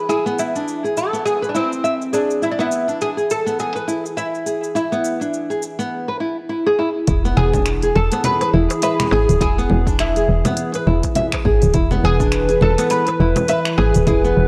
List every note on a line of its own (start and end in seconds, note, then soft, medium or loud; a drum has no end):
0.00 5.92 E3 medium
0.00 5.91 E4 medium
0.00 5.91 G#5 loud
0.00 5.91 B5 medium
0.09 0.25 E4 medium
0.09 0.39 G#4 medium
0.09 shaker soft
0.26 0.53 B3 medium
0.26 shaker soft
0.39 0.93 E4 medium
0.39 shaker medium
0.56 0.83 D4 medium
0.56 shaker soft
0.68 shaker soft
0.84 0.96 G#4 medium
0.84 shaker soft
0.97 1.25 A4 medium
0.97 shaker medium
1.13 1.41 B3 medium
1.13 shaker soft
1.26 1.50 G#4 loud
1.26 shaker soft
1.42 1.53 B4 medium
1.42 shaker soft
1.49 1.55 D4 medium
1.55 2.15 C4 medium
1.55 1.71 E4 medium
1.55 shaker medium
1.73 shaker soft
1.84 1.94 E5 medium
1.84 shaker soft
2.02 shaker soft
2.13 2.43 D4 medium
2.13 2.41 G#4 medium
2.13 shaker medium
2.30 shaker soft
2.42 2.58 E4 medium
2.42 2.50 E4 medium
2.42 shaker soft
2.52 2.59 D4 medium
2.59 2.86 B3 medium
2.59 2.98 E4 medium
2.59 shaker soft
2.72 shaker medium
2.88 3.15 D4 medium
2.88 shaker soft
3.01 3.09 G#4 medium
3.01 shaker soft
3.17 3.29 G#4 medium
3.17 shaker soft
3.30 3.59 A4 medium
3.30 shaker medium
3.46 3.74 B3 medium
3.46 shaker soft
3.59 4.13 G#4 medium
3.59 shaker soft
3.75 3.86 B4 medium
3.75 shaker soft
3.88 4.04 E4 medium
3.88 shaker medium
4.06 shaker soft
4.17 4.71 E4 medium
4.17 4.26 E5 medium
4.17 shaker soft
4.35 shaker soft
4.46 4.74 G#4 medium
4.46 shaker medium
4.64 shaker soft
4.75 4.91 E4 medium
4.75 5.88 E4 medium
4.75 shaker soft
4.92 5.19 B3 medium
4.92 shaker soft
5.04 shaker medium
5.21 5.48 D4 medium
5.21 shaker soft
5.34 shaker soft
5.50 5.62 G#4 medium
5.50 shaker soft
5.62 shaker medium
5.79 6.07 B3 medium
5.79 shaker soft
6.08 6.19 B4 medium
6.20 6.36 E4 medium
6.49 6.65 E4 medium
6.66 6.78 G#4 loud
6.79 6.88 E4 medium
7.06 7.33 E1 medium
7.06 14.48 E3 medium
7.06 7.24 E4 medium
7.06 kick loud
7.06 closed hi-hat medium
7.06 shaker medium
7.25 7.52 B3 loud
7.25 11.94 G#4 loud
7.25 shaker soft
7.32 14.48 E4 medium
7.37 7.92 E1 medium
7.37 7.91 G#4 loud
7.37 darbuka dum medium
7.53 7.81 D4 medium
7.53 kick loud
7.53 low conga medium
7.53 shaker medium
7.66 finger snap medium
7.66 closed hi-hat medium
7.66 shaker medium
7.82 7.95 G#4 medium
7.82 closed hi-hat soft
7.82 shaker soft
7.96 8.10 E1 medium
7.96 8.24 A4 loud
8.12 8.40 B3 loud
8.12 closed hi-hat soft
8.12 darbuka tek medium
8.12 shaker medium
8.24 8.82 B4 loud
8.24 closed hi-hat medium
8.24 low conga medium
8.24 shaker medium
8.41 8.52 B4 medium
8.41 closed hi-hat soft
8.41 darbuka ka medium
8.41 darbuka tek medium
8.41 shaker soft
8.54 8.68 E1 loud
8.54 8.70 E4 medium
8.54 darbuka ka soft
8.70 closed hi-hat soft
8.70 darbuka tek medium
8.70 shaker medium
8.82 9.12 B4 loud
8.82 8.92 E5 medium
8.82 closed hi-hat medium
8.82 darbuka ka medium
8.82 shaker medium
9.00 finger snap medium
9.00 low conga medium
9.00 shaker soft
9.11 9.26 G#1 medium
9.11 9.40 G#4 medium
9.11 9.40 G#4 loud
9.11 darbuka tek medium
9.29 9.39 D1 loud
9.29 closed hi-hat soft
9.29 shaker medium
9.41 9.66 E1 medium
9.41 9.57 E4 medium
9.41 9.96 G#4 loud
9.41 kick loud
9.41 closed hi-hat medium
9.41 shaker medium
9.58 9.86 B3 loud
9.58 shaker soft
9.70 10.25 E1 loud
9.70 low conga medium
9.87 10.15 D4 medium
9.87 kick loud
9.87 closed hi-hat soft
9.87 shaker medium
9.99 11.41 E4 medium
9.99 finger snap medium
9.99 closed hi-hat medium
9.99 shaker medium
10.16 10.28 G#4 medium
10.16 closed hi-hat soft
10.16 shaker soft
10.29 10.43 E1 medium
10.45 10.73 B3 loud
10.45 closed hi-hat soft
10.45 darbuka tek medium
10.45 low conga medium
10.45 shaker medium
10.57 closed hi-hat medium
10.57 shaker medium
10.74 10.86 B4 medium
10.74 closed hi-hat soft
10.74 darbuka ka medium
10.74 shaker soft
10.87 11.01 E1 loud
10.87 11.03 E4 medium
11.03 kick medium
11.03 closed hi-hat soft
11.03 darbuka ka medium
11.03 shaker medium
11.15 11.25 E5 medium
11.15 closed hi-hat medium
11.15 low conga medium
11.15 shaker medium
11.32 finger snap medium
11.32 kick medium
11.32 closed hi-hat soft
11.32 darbuka ka medium
11.32 darbuka tek medium
11.32 shaker soft
11.45 11.59 G#1 medium
11.45 11.73 G#4 medium
11.45 kick loud
11.62 11.72 D1 loud
11.62 closed hi-hat soft
11.62 shaker medium
11.74 11.99 E1 loud
11.74 11.90 E4 medium
11.74 kick loud
11.74 closed hi-hat medium
11.74 shaker medium
11.91 12.18 B3 loud
11.91 14.48 B4 medium
11.91 low conga medium
11.91 shaker soft
12.03 12.58 E1 medium
12.03 12.62 G#4 loud
12.03 darbuka dum loud
12.20 12.48 D4 medium
12.20 kick loud
12.20 shaker medium
12.32 finger snap medium
12.32 closed hi-hat medium
12.32 shaker medium
12.49 12.61 G#4 medium
12.49 closed hi-hat soft
12.49 shaker soft
12.61 12.76 E1 medium
12.61 12.89 A4 loud
12.61 low conga medium
12.78 13.06 B3 loud
12.78 closed hi-hat soft
12.78 darbuka tek medium
12.78 shaker medium
12.90 13.47 B4 loud
12.90 closed hi-hat medium
12.90 shaker medium
13.07 13.18 B4 medium
13.07 closed hi-hat soft
13.07 darbuka ka medium
13.07 darbuka tek medium
13.07 shaker soft
13.20 13.34 E1 loud
13.20 13.36 E4 medium
13.20 darbuka ka soft
13.36 closed hi-hat soft
13.36 darbuka tek medium
13.36 low conga medium
13.36 shaker medium
13.48 13.77 B4 loud
13.48 13.59 E5 medium
13.48 closed hi-hat medium
13.48 darbuka ka soft
13.48 shaker medium
13.65 finger snap medium
13.65 shaker soft
13.78 13.92 G#1 medium
13.78 14.06 G#4 loud
13.78 14.06 G#4 medium
13.78 darbuka tek medium
13.94 14.05 D1 loud
13.94 closed hi-hat soft
13.94 shaker medium
14.07 14.32 E1 loud
14.07 14.23 E4 medium
14.07 14.48 G#4 medium
14.07 kick loud
14.07 closed hi-hat medium
14.07 low conga medium
14.07 shaker medium
14.24 14.48 B3 loud
14.24 shaker soft
14.37 14.48 E1 medium